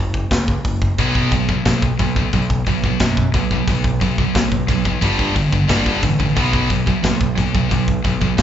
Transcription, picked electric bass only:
0, 0, Header, 1, 2, 480
1, 0, Start_track
1, 0, Tempo, 672646
1, 704, Time_signature, 4, 2, 24, 8
1, 6009, End_track
2, 0, Start_track
2, 0, Title_t, "Picked electric bass"
2, 0, Program_c, 0, 34
2, 0, Note_on_c, 0, 30, 81
2, 179, Note_off_c, 0, 30, 0
2, 221, Note_on_c, 0, 37, 85
2, 420, Note_off_c, 0, 37, 0
2, 464, Note_on_c, 0, 30, 86
2, 663, Note_off_c, 0, 30, 0
2, 706, Note_on_c, 0, 35, 92
2, 1104, Note_off_c, 0, 35, 0
2, 1182, Note_on_c, 0, 35, 82
2, 1383, Note_off_c, 0, 35, 0
2, 1424, Note_on_c, 0, 35, 87
2, 1624, Note_off_c, 0, 35, 0
2, 1666, Note_on_c, 0, 35, 84
2, 1865, Note_off_c, 0, 35, 0
2, 1903, Note_on_c, 0, 35, 85
2, 2104, Note_off_c, 0, 35, 0
2, 2143, Note_on_c, 0, 42, 91
2, 2344, Note_off_c, 0, 42, 0
2, 2381, Note_on_c, 0, 35, 88
2, 2583, Note_off_c, 0, 35, 0
2, 2623, Note_on_c, 0, 35, 94
2, 3023, Note_off_c, 0, 35, 0
2, 3101, Note_on_c, 0, 35, 94
2, 3303, Note_off_c, 0, 35, 0
2, 3341, Note_on_c, 0, 35, 91
2, 3543, Note_off_c, 0, 35, 0
2, 3583, Note_on_c, 0, 31, 93
2, 3784, Note_off_c, 0, 31, 0
2, 3827, Note_on_c, 0, 31, 85
2, 4026, Note_off_c, 0, 31, 0
2, 4063, Note_on_c, 0, 31, 90
2, 4263, Note_off_c, 0, 31, 0
2, 4304, Note_on_c, 0, 33, 92
2, 4504, Note_off_c, 0, 33, 0
2, 4543, Note_on_c, 0, 35, 91
2, 4941, Note_off_c, 0, 35, 0
2, 5026, Note_on_c, 0, 35, 99
2, 5224, Note_off_c, 0, 35, 0
2, 5268, Note_on_c, 0, 35, 88
2, 5464, Note_off_c, 0, 35, 0
2, 5506, Note_on_c, 0, 35, 93
2, 5703, Note_off_c, 0, 35, 0
2, 5741, Note_on_c, 0, 35, 82
2, 5940, Note_off_c, 0, 35, 0
2, 5982, Note_on_c, 0, 42, 90
2, 6009, Note_off_c, 0, 42, 0
2, 6009, End_track
0, 0, End_of_file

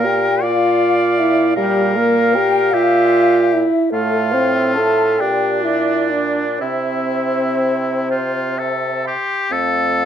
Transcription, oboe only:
0, 0, Header, 1, 2, 480
1, 0, Start_track
1, 0, Key_signature, -1, "major"
1, 0, Tempo, 772201
1, 975, Time_signature, 6, 3, 24, 8
1, 1949, Tempo, 818554
1, 2909, Tempo, 891530
1, 3389, Tempo, 972447
1, 4829, Tempo, 934579
1, 5309, Tempo, 847458
1, 5612, End_track
2, 0, Start_track
2, 0, Title_t, "Oboe"
2, 0, Program_c, 0, 68
2, 0, Note_on_c, 0, 70, 75
2, 266, Note_on_c, 0, 74, 70
2, 275, Note_off_c, 0, 70, 0
2, 965, Note_off_c, 0, 74, 0
2, 969, Note_on_c, 0, 70, 68
2, 1702, Note_on_c, 0, 67, 62
2, 1711, Note_off_c, 0, 70, 0
2, 2259, Note_off_c, 0, 67, 0
2, 2416, Note_on_c, 0, 65, 72
2, 3140, Note_on_c, 0, 62, 60
2, 3148, Note_off_c, 0, 65, 0
2, 3851, Note_off_c, 0, 62, 0
2, 3854, Note_on_c, 0, 64, 49
2, 4574, Note_off_c, 0, 64, 0
2, 4594, Note_on_c, 0, 65, 58
2, 4831, Note_on_c, 0, 69, 69
2, 4839, Note_off_c, 0, 65, 0
2, 5077, Note_off_c, 0, 69, 0
2, 5081, Note_on_c, 0, 67, 75
2, 5311, Note_on_c, 0, 69, 90
2, 5319, Note_off_c, 0, 67, 0
2, 5612, Note_off_c, 0, 69, 0
2, 5612, End_track
0, 0, End_of_file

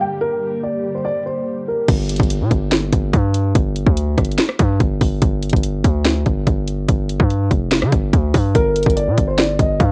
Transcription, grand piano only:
0, 0, Header, 1, 2, 480
1, 0, Start_track
1, 0, Key_signature, -2, "minor"
1, 0, Tempo, 416667
1, 250, Time_signature, 4, 2, 24, 8
1, 11426, End_track
2, 0, Start_track
2, 0, Title_t, "Grand piano"
2, 0, Program_c, 0, 0
2, 12, Note_on_c, 0, 79, 75
2, 211, Note_off_c, 0, 79, 0
2, 246, Note_on_c, 0, 70, 102
2, 699, Note_off_c, 0, 70, 0
2, 733, Note_on_c, 0, 74, 81
2, 1070, Note_off_c, 0, 74, 0
2, 1092, Note_on_c, 0, 72, 69
2, 1191, Note_off_c, 0, 72, 0
2, 1208, Note_on_c, 0, 74, 88
2, 1408, Note_off_c, 0, 74, 0
2, 1452, Note_on_c, 0, 72, 71
2, 1902, Note_off_c, 0, 72, 0
2, 1937, Note_on_c, 0, 70, 73
2, 2134, Note_off_c, 0, 70, 0
2, 9852, Note_on_c, 0, 70, 110
2, 10302, Note_off_c, 0, 70, 0
2, 10330, Note_on_c, 0, 74, 84
2, 10668, Note_off_c, 0, 74, 0
2, 10686, Note_on_c, 0, 72, 77
2, 10788, Note_off_c, 0, 72, 0
2, 10810, Note_on_c, 0, 74, 81
2, 11010, Note_off_c, 0, 74, 0
2, 11060, Note_on_c, 0, 75, 80
2, 11256, Note_off_c, 0, 75, 0
2, 11296, Note_on_c, 0, 77, 77
2, 11426, Note_off_c, 0, 77, 0
2, 11426, End_track
0, 0, End_of_file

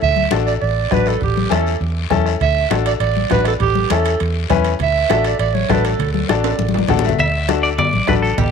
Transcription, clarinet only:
0, 0, Header, 1, 2, 480
1, 0, Start_track
1, 0, Key_signature, 2, "major"
1, 0, Tempo, 298656
1, 32, Time_signature, 4, 2, 24, 8
1, 13680, End_track
2, 0, Start_track
2, 0, Title_t, "Clarinet"
2, 0, Program_c, 0, 71
2, 44, Note_on_c, 0, 76, 113
2, 484, Note_off_c, 0, 76, 0
2, 751, Note_on_c, 0, 74, 87
2, 859, Note_off_c, 0, 74, 0
2, 981, Note_on_c, 0, 74, 91
2, 1495, Note_on_c, 0, 71, 94
2, 1519, Note_off_c, 0, 74, 0
2, 1740, Note_on_c, 0, 69, 82
2, 1764, Note_off_c, 0, 71, 0
2, 1965, Note_off_c, 0, 69, 0
2, 1980, Note_on_c, 0, 67, 83
2, 2412, Note_off_c, 0, 67, 0
2, 2485, Note_on_c, 0, 69, 72
2, 2905, Note_off_c, 0, 69, 0
2, 3888, Note_on_c, 0, 76, 104
2, 4325, Note_off_c, 0, 76, 0
2, 4608, Note_on_c, 0, 74, 86
2, 4712, Note_off_c, 0, 74, 0
2, 4820, Note_on_c, 0, 74, 90
2, 5270, Note_off_c, 0, 74, 0
2, 5331, Note_on_c, 0, 71, 85
2, 5543, Note_off_c, 0, 71, 0
2, 5587, Note_on_c, 0, 69, 82
2, 5686, Note_off_c, 0, 69, 0
2, 5799, Note_on_c, 0, 67, 91
2, 6287, Note_on_c, 0, 69, 79
2, 6311, Note_off_c, 0, 67, 0
2, 6757, Note_off_c, 0, 69, 0
2, 7752, Note_on_c, 0, 76, 106
2, 8401, Note_off_c, 0, 76, 0
2, 8460, Note_on_c, 0, 74, 88
2, 8663, Note_off_c, 0, 74, 0
2, 8672, Note_on_c, 0, 74, 100
2, 8903, Note_on_c, 0, 73, 93
2, 8927, Note_off_c, 0, 74, 0
2, 9168, Note_on_c, 0, 71, 85
2, 9192, Note_off_c, 0, 73, 0
2, 9405, Note_on_c, 0, 69, 86
2, 9429, Note_off_c, 0, 71, 0
2, 9831, Note_off_c, 0, 69, 0
2, 9841, Note_on_c, 0, 69, 71
2, 10099, Note_on_c, 0, 74, 83
2, 10123, Note_off_c, 0, 69, 0
2, 10824, Note_off_c, 0, 74, 0
2, 13680, End_track
0, 0, End_of_file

